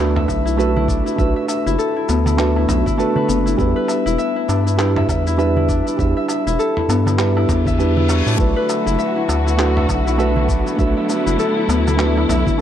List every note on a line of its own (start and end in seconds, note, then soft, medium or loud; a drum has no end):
0.00 0.26 D2 medium
0.00 0.57 A3 medium
0.00 1.59 B3 medium
0.00 0.58 D4 medium
0.00 0.88 D4 medium
0.00 0.45 E4 medium
0.00 0.58 F#4 medium
0.00 0.72 G4 medium
0.00 0.59 B4 medium
0.00 1.01 B4 loud
0.00 0.15 E5 medium
0.16 0.27 E5 medium
0.16 mid tom medium
0.16 darbuka ka medium
0.28 1.02 B1 medium
0.28 0.58 E5 medium
0.28 kick medium
0.28 darbuka ka medium
0.28 darbuka tek soft
0.28 darbuka dum medium
0.28 cabasa medium
0.45 0.76 E4 medium
0.45 cabasa soft
0.57 1.15 A3 medium
0.57 1.15 D4 medium
0.57 1.16 F#4 medium
0.57 1.16 B4 loud
0.57 1.18 E5 medium
0.57 cabasa soft
0.76 1.06 E4 medium
0.76 darbuka dum medium
0.88 3.68 D4 medium
0.88 kick loud
0.88 cabasa medium
1.06 1.66 E4 medium
1.06 cabasa soft
1.16 1.34 B1 medium
1.16 2.35 A3 medium
1.16 2.35 D4 medium
1.16 2.36 F#4 medium
1.16 1.36 E5 medium
1.16 kick loud
1.16 cabasa soft
1.20 2.37 B4 medium
1.36 1.48 E5 medium
1.48 2.39 E5 medium
1.48 darbuka ka medium
1.48 cabasa medium
1.66 1.77 F#1 medium
1.66 1.96 E4 loud
1.66 cabasa soft
1.78 2.98 A4 medium
1.78 cabasa soft
1.96 2.26 E4 medium
2.09 2.66 D2 medium
2.09 3.28 B3 medium
2.09 darbuka tek medium
2.09 cabasa medium
2.26 2.56 E4 medium
2.26 darbuka tek soft
2.26 darbuka dum medium
2.26 cabasa soft
2.37 2.95 A3 medium
2.37 2.95 D4 medium
2.37 2.96 F#4 medium
2.37 2.96 B4 medium
2.37 2.68 E5 medium
2.37 clap medium
2.37 cabasa soft
2.56 2.86 E4 medium
2.56 darbuka ka medium
2.68 2.84 B1 medium
2.68 3.88 E5 medium
2.68 mid tom medium
2.68 darbuka ka medium
2.68 cabasa medium
2.86 3.45 E4 medium
2.86 kick medium
2.86 darbuka dum medium
2.86 cabasa soft
2.98 3.55 A3 loud
2.98 3.56 D4 medium
2.98 3.56 F#4 medium
2.98 5.18 A4 medium
2.98 3.56 B4 loud
2.98 cabasa soft
3.16 3.75 B4 medium
3.16 darbuka dum medium
3.28 3.55 F#1 medium
3.28 6.39 B3 medium
3.28 darbuka ka medium
3.28 cabasa medium
3.46 3.58 E4 medium
3.46 cabasa soft
3.57 3.74 E2 medium
3.57 4.75 G3 medium
3.57 4.75 D4 medium
3.57 4.05 E4 medium
3.57 4.76 E4 medium
3.57 4.77 B4 medium
3.57 kick loud
3.57 cabasa soft
3.76 5.81 B4 loud
3.88 4.18 E5 medium
3.88 darbuka ka medium
3.88 cabasa medium
4.06 4.17 E1 medium
4.06 4.36 E4 loud
4.06 cabasa soft
4.18 4.96 E5 medium
4.18 cabasa soft
4.36 4.66 E4 medium
4.48 5.06 G2 medium
4.48 5.68 D4 medium
4.48 darbuka tek medium
4.48 cabasa medium
4.67 4.78 E4 medium
4.67 cabasa soft
4.77 5.35 G3 medium
4.77 5.36 D4 medium
4.77 5.26 E4 medium
4.77 5.36 E4 medium
4.77 5.36 B4 medium
4.77 clap medium
4.77 cabasa soft
4.96 5.09 E5 medium
4.96 mid tom medium
4.96 darbuka ka medium
5.09 5.82 E2 medium
5.09 5.38 E5 medium
5.09 kick medium
5.09 darbuka ka medium
5.09 darbuka tek medium
5.09 darbuka dum medium
5.09 cabasa medium
5.27 5.56 E4 loud
5.27 cabasa soft
5.37 5.95 G3 medium
5.37 5.95 D4 medium
5.37 5.96 E4 medium
5.37 5.96 B4 loud
5.37 5.99 E5 medium
5.37 cabasa soft
5.56 5.86 E4 medium
5.56 darbuka dum medium
5.69 7.48 D4 medium
5.69 kick medium
5.69 cabasa medium
5.87 6.46 E4 medium
5.87 cabasa soft
5.96 6.14 E2 loud
5.96 7.15 G3 medium
5.96 7.15 D4 medium
5.96 7.16 E4 medium
5.96 6.16 E5 medium
5.96 kick loud
5.96 cabasa soft
6.01 7.17 B4 medium
6.17 6.29 E5 medium
6.28 7.18 E5 medium
6.28 darbuka ka medium
6.28 cabasa medium
6.47 6.57 E1 medium
6.47 6.77 E4 loud
6.47 cabasa soft
6.59 8.79 A4 medium
6.59 cabasa soft
6.77 7.06 E4 medium
6.77 mid tom medium
6.89 7.46 G2 medium
6.89 9.99 B3 medium
6.89 darbuka tek medium
6.89 cabasa medium
7.06 7.36 E4 medium
7.06 darbuka tek medium
7.06 darbuka dum medium
7.06 cabasa soft
7.17 7.75 G3 medium
7.17 7.76 D4 medium
7.17 7.76 E4 medium
7.17 7.76 B4 medium
7.17 7.66 E5 medium
7.17 clap medium
7.17 reverse cymbal medium
7.17 cabasa soft
7.36 7.79 E4 medium
7.36 darbuka ka medium
7.49 8.22 E2 medium
7.49 8.26 D4 medium
7.49 kick medium
7.49 mid tom medium
7.49 darbuka ka medium
7.49 cabasa medium
7.66 8.68 E5 loud
7.66 kick medium
7.66 darbuka dum medium
7.66 cabasa soft
7.78 8.35 G3 medium
7.78 8.36 D4 medium
7.78 8.36 E4 medium
7.78 7.96 E4 medium
7.78 8.36 B4 medium
7.78 cabasa soft
7.97 8.38 E4 medium
7.97 darbuka dum medium
8.09 10.53 F#4 medium
8.09 darbuka ka medium
8.09 darbuka tek medium
8.09 cabasa medium
8.27 8.37 A2 medium
8.27 9.27 D4 medium
8.27 cabasa soft
8.37 8.54 B1 loud
8.37 12.61 D3 medium
8.37 12.61 F#3 medium
8.37 9.55 A3 medium
8.37 12.61 A3 medium
8.37 12.61 B3 medium
8.37 9.55 D4 medium
8.37 8.86 E4 medium
8.37 10.77 F#4 medium
8.37 9.56 F#4 medium
8.37 9.57 B4 medium
8.37 kick loud
8.37 cabasa soft
8.56 10.61 B4 medium
8.68 8.98 E5 medium
8.68 darbuka ka medium
8.68 cabasa medium
8.86 8.97 F#1 medium
8.86 9.16 E4 loud
8.86 cabasa soft
8.98 9.76 E5 medium
8.98 cabasa soft
9.16 9.46 E4 medium
9.28 9.86 D2 medium
9.28 10.48 D4 medium
9.28 darbuka tek medium
9.28 cabasa medium
9.46 9.58 E4 medium
9.46 cabasa soft
9.57 10.15 A3 medium
9.57 10.16 D4 medium
9.57 10.06 E4 medium
9.57 10.16 F#4 medium
9.57 10.16 B4 medium
9.57 clap medium
9.57 cabasa soft
9.76 9.88 E5 medium
9.76 mid tom medium
9.76 darbuka ka medium
9.88 10.62 B1 medium
9.88 10.18 E5 medium
9.88 kick medium
9.88 darbuka ka medium
9.88 darbuka tek medium
9.88 darbuka dum medium
9.88 cabasa medium
10.07 10.36 E4 loud
10.07 cabasa soft
10.18 10.75 A3 medium
10.18 10.76 D4 medium
10.18 10.76 F#4 medium
10.18 10.76 B4 loud
10.18 10.78 E5 medium
10.18 cabasa soft
10.36 10.66 E4 medium
10.36 darbuka dum medium
10.49 12.61 D4 medium
10.49 kick loud
10.49 cabasa medium
10.66 11.26 E4 medium
10.66 cabasa soft
10.76 10.94 B1 medium
10.76 11.95 A3 medium
10.76 11.95 D4 medium
10.76 12.61 E4 medium
10.76 11.96 F#4 medium
10.76 11.97 B4 medium
10.76 10.96 E5 medium
10.76 kick loud
10.76 cabasa soft
10.97 11.09 E5 medium
11.09 11.99 E5 medium
11.09 darbuka ka medium
11.09 cabasa medium
11.26 11.37 F#1 medium
11.26 11.57 E4 loud
11.26 cabasa soft
11.39 12.58 A4 medium
11.39 cabasa soft
11.57 11.86 E4 medium
11.68 12.26 D2 medium
11.68 12.61 B3 medium
11.68 darbuka tek medium
11.68 cabasa medium
11.86 12.17 E4 medium
11.86 darbuka tek medium
11.86 darbuka dum medium
11.86 cabasa soft
11.97 12.55 A3 medium
11.97 12.55 D4 medium
11.97 12.56 F#4 medium
11.97 12.56 B4 medium
11.97 12.29 E5 medium
11.97 clap medium
11.97 cabasa soft
12.17 12.46 E4 medium
12.17 darbuka ka medium
12.29 12.44 B1 loud
12.29 12.61 E5 medium
12.29 mid tom medium
12.29 darbuka ka medium
12.29 cabasa medium
12.46 12.61 E4 loud
12.46 kick loud
12.46 darbuka dum medium
12.46 cabasa soft
12.57 12.61 A3 medium